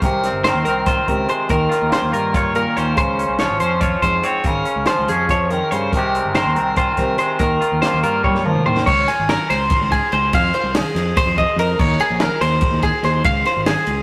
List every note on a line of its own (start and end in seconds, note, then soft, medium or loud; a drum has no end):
0.02 0.28 C2 medium
0.02 0.45 C3 medium
0.02 0.44 A#4 medium
0.02 kick loud
0.02 closed hi-hat medium
0.24 0.66 C4 medium
0.24 snare soft
0.24 closed hi-hat medium
0.32 0.50 G1 medium
0.44 1.48 D#3 medium
0.44 0.87 A#4 medium
0.44 0.65 C5 medium
0.44 snare loud
0.44 closed hi-hat medium
0.54 0.63 D#2 medium
0.65 1.00 C2 medium
0.65 1.51 C4 medium
0.65 0.86 A#4 medium
0.65 closed hi-hat medium
0.86 1.69 F4 medium
0.86 1.09 C5 medium
0.86 kick loud
0.86 snare soft
0.86 closed hi-hat medium
1.08 1.25 C#2 medium
1.08 1.47 C3 medium
1.08 1.29 A#4 medium
1.08 kick medium
1.08 closed hi-hat medium
1.28 1.49 G#3 medium
1.28 1.50 C5 medium
1.28 closed hi-hat medium
1.49 1.67 D#2 medium
1.49 2.97 D#3 medium
1.49 1.92 A#4 medium
1.49 kick loud
1.49 closed hi-hat medium
1.69 1.90 F4 medium
1.69 snare soft
1.69 closed hi-hat medium
1.82 1.90 D#2 medium
1.89 2.93 A#3 medium
1.89 2.11 F4 medium
1.89 2.13 C5 medium
1.89 snare medium
1.89 closed hi-hat medium
2.02 2.11 D#2 medium
2.12 2.65 G2 medium
2.12 2.34 F4 medium
2.12 2.35 A#4 medium
2.12 closed hi-hat medium
2.34 3.39 F4 medium
2.34 2.55 C#5 medium
2.34 kick loud
2.34 closed hi-hat medium
2.55 2.95 A#2 medium
2.55 2.77 A#4 medium
2.55 closed hi-hat soft
2.77 2.94 D#2 medium
2.77 3.18 C#4 medium
2.77 2.97 C5 medium
2.77 snare soft
2.77 closed hi-hat soft
2.96 3.23 C#2 medium
2.96 3.39 C#3 medium
2.96 3.39 C5 medium
2.96 kick loud
2.96 closed hi-hat medium
3.19 3.63 C#4 medium
3.19 closed hi-hat medium
3.29 3.46 C2 medium
3.39 4.42 F3 medium
3.39 3.81 F4 medium
3.39 3.60 C#5 medium
3.39 snare loud
3.39 closed hi-hat medium
3.50 3.59 G#1 medium
3.60 3.95 F2 medium
3.60 4.44 C#4 medium
3.60 3.81 C5 medium
3.60 closed hi-hat medium
3.81 4.86 F4 medium
3.81 4.02 C#5 medium
3.81 kick loud
3.81 closed hi-hat medium
4.02 4.20 F2 medium
4.02 4.42 G#2 medium
4.02 4.24 C5 medium
4.02 kick medium
4.02 closed hi-hat medium
4.23 4.48 C4 medium
4.23 4.45 C#5 medium
4.23 closed hi-hat medium
4.44 4.62 G#1 medium
4.44 4.87 C#3 medium
4.44 4.87 A#4 medium
4.44 kick medium
4.44 closed hi-hat medium
4.65 5.07 C#4 medium
4.65 closed hi-hat medium
4.76 4.85 C#2 medium
4.86 5.29 F3 medium
4.86 5.93 F4 medium
4.86 5.08 C5 medium
4.86 snare medium
4.86 closed hi-hat medium
4.99 5.07 C#2 medium
5.08 5.60 F2 medium
5.08 5.91 C#4 medium
5.08 5.30 G#4 medium
5.08 closed hi-hat medium
5.29 5.51 F3 medium
5.29 5.50 C#5 medium
5.29 kick medium
5.29 closed hi-hat medium
5.50 5.72 D#3 medium
5.50 5.71 A#4 medium
5.50 closed hi-hat medium
5.71 5.89 G2 medium
5.71 5.93 C#3 medium
5.71 5.92 C5 medium
5.71 closed hi-hat medium
5.92 6.19 C2 medium
5.92 6.36 C3 medium
5.92 6.33 D#3 medium
5.92 6.34 A#4 medium
5.92 kick loud
5.92 closed hi-hat medium
5.97 7.19 G#3 medium
5.97 6.14 C4 medium
5.97 6.34 G4 medium
6.15 6.54 C4 medium
6.15 closed hi-hat medium
6.25 6.42 G1 medium
6.35 7.39 D#3 medium
6.35 6.77 A#4 medium
6.35 6.56 C5 medium
6.35 snare loud
6.35 closed hi-hat medium
6.46 6.54 D#2 medium
6.55 6.91 C2 medium
6.55 7.40 C4 medium
6.55 6.77 A#4 medium
6.55 closed hi-hat medium
6.76 7.59 F4 medium
6.76 6.98 C5 medium
6.76 kick medium
6.76 closed hi-hat medium
6.97 7.15 C2 medium
6.97 7.38 C3 medium
6.97 7.18 A#4 medium
6.97 kick medium
6.97 snare soft
6.97 closed hi-hat medium
7.18 7.41 G#3 medium
7.18 7.39 C5 medium
7.18 snare soft
7.18 closed hi-hat medium
7.39 7.57 D#2 medium
7.39 8.23 D#3 medium
7.39 7.82 A#4 medium
7.39 kick loud
7.39 closed hi-hat medium
7.61 7.82 F4 medium
7.61 closed hi-hat medium
7.72 7.80 D#2 medium
7.82 8.85 A#3 medium
7.82 8.03 F4 medium
7.82 8.03 C5 medium
7.82 snare loud
7.82 closed hi-hat medium
7.93 8.01 D#2 medium
8.03 8.55 G2 medium
8.03 10.34 F4 medium
8.03 8.24 A#4 medium
8.03 closed hi-hat medium
8.23 8.45 G3 medium
8.23 8.45 C#5 medium
8.23 kick loud
8.23 high tom medium
8.35 snare soft
8.45 8.66 F3 medium
8.45 8.65 A#4 medium
8.45 mid tom medium
8.55 mid tom medium
8.66 8.83 D#2 medium
8.66 8.87 D#3 medium
8.66 8.86 C5 medium
8.66 floor tom medium
8.77 snare medium
8.86 9.04 C#2 medium
8.86 9.07 C#5 medium
8.86 kick loud
8.86 crash loud
9.08 9.29 G#4 medium
9.08 snare soft
9.08 ride medium
9.19 9.36 G#1 medium
9.29 9.49 A#4 medium
9.29 snare loud
9.29 ride loud
9.50 9.67 C#2 medium
9.50 9.92 C5 medium
9.50 snare soft
9.50 ride medium
9.70 kick loud
9.70 snare soft
9.70 ride loud
9.82 9.98 C#2 medium
9.92 10.12 G#4 medium
9.92 kick medium
9.92 ride medium
10.12 10.30 C#2 loud
10.12 10.33 C5 medium
10.12 ride medium
10.33 10.50 F2 medium
10.33 10.55 F5 medium
10.33 kick loud
10.33 ride loud
10.54 10.76 C5 medium
10.54 ride medium
10.64 10.81 C2 medium
10.75 11.17 G#4 medium
10.75 snare loud
10.75 ride loud
10.95 11.12 F2 medium
10.95 snare soft
10.95 ride medium
11.17 11.38 C5 medium
11.17 kick loud
11.17 snare soft
11.17 ride loud
11.26 11.43 F2 medium
11.38 11.59 D#5 medium
11.38 kick medium
11.38 ride medium
11.56 11.74 F2 loud
11.56 11.79 A#4 medium
11.56 ride medium
11.79 11.97 D#2 medium
11.79 12.00 C#5 medium
11.79 kick loud
11.79 crash loud
12.00 12.21 G#4 medium
12.00 ride medium
12.10 12.28 A#1 medium
12.20 12.42 A#4 medium
12.20 snare loud
12.20 ride loud
12.41 12.59 D#2 medium
12.41 12.83 C5 medium
12.41 snare soft
12.41 ride medium
12.61 kick loud
12.61 ride loud
12.71 12.89 D#2 medium
12.82 13.04 G#4 medium
12.82 kick medium
12.82 ride medium
13.03 13.21 D#2 loud
13.03 13.25 C5 medium
13.03 snare soft
13.03 ride medium
13.24 13.42 C#2 loud
13.24 13.46 F5 loud
13.24 kick loud
13.24 ride loud
13.45 13.67 C5 medium
13.45 snare soft
13.45 ride medium
13.56 13.74 G#1 medium
13.66 14.03 G#4 medium
13.66 snare loud
13.66 ride loud
13.87 14.03 C#2 medium
13.87 ride medium